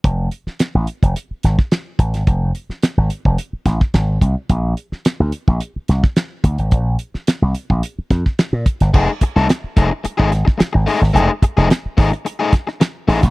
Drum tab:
CC |----------------|----------------|----------------|----------------|
HH |x-x-x-xxx-x-x-xx|x-x-x-x-x-x-x-x-|x-x-x-x-x-x-x-xx|x-x-x-x-x-x-x-xx|
SD |---oo-----ooo--o|---oo-----ooo---|---oo-----ooo---|---oo-----ooo--o|
BD |o------o---o--o-|o------o--oo--o-|o------o---o--o-|o------o--oo--o-|

CC |x---------------|----------------|
HH |--x-x-x-x-x-x-o-|x-x-x-oxx-x-x-ox|
SD |---oo-----ooo--o|---oo-----ooo--o|
BD |o-o---o--o-o----|--o---o---o----o|